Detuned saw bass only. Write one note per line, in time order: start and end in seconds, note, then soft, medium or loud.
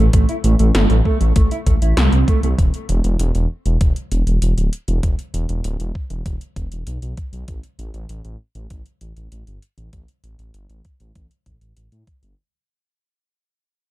0.13 0.25 A1 loud
0.44 0.55 A1 medium
0.59 0.71 A1 medium
0.75 0.86 G1 loud
0.90 1.01 A1 medium
1.21 1.32 A1 medium
1.36 1.47 A1 loud
1.67 1.78 A1 medium
1.82 1.93 A1 medium
1.97 2.09 C2 loud
2.13 2.24 C2 medium
2.43 2.55 C2 medium
2.58 2.70 E1 loud
2.89 3.00 E1 medium
3.05 3.16 E1 medium
3.20 3.31 E1 loud
3.35 3.46 E1 medium
3.66 3.77 E1 medium
3.81 3.92 E1 loud
4.12 4.23 E1 medium
4.27 4.38 E1 medium
4.42 4.53 E1 medium
4.58 4.69 D1 medium
4.88 4.99 E1 medium
5.03 5.15 E1 loud
5.34 5.45 E1 medium
5.49 5.61 E1 medium
5.65 5.76 D1 loud
5.80 5.91 E1 medium
6.11 6.22 E1 medium
6.26 6.37 E1 medium
6.56 6.68 E1 medium
6.72 6.83 E1 medium
6.87 6.98 B1 loud
7.02 7.14 B1 medium
7.33 7.44 B1 medium
7.48 7.60 A1 loud
7.79 7.90 A1 medium
7.94 8.05 A1 medium
8.10 8.21 A1 medium
8.25 8.36 A1 medium
8.55 8.67 A1 medium
8.71 8.82 A1 loud
9.01 9.13 A1 medium
9.17 9.28 A1 medium
9.32 9.43 A1 loud
9.47 9.58 G1 medium
9.78 9.89 A1 medium
9.93 10.04 A1 loud
10.24 10.35 A1 medium
10.39 10.50 A1 medium
10.55 10.66 G1 medium
10.70 10.81 A1 medium
11.01 11.12 A1 medium
11.16 11.27 A1 medium
11.46 11.57 A1 medium
11.61 11.73 A1 medium
11.77 11.88 A1 medium
11.92 12.03 A2 medium
12.23 12.34 G1 medium